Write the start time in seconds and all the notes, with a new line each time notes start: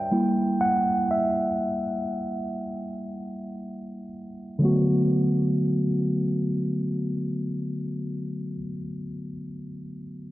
Already playing: D5 E5 G5
0.11 G3 A#3 E4
0.61 F#5
1.11 E5
4.59 D3 F#3 A3
4.63 B3 F#4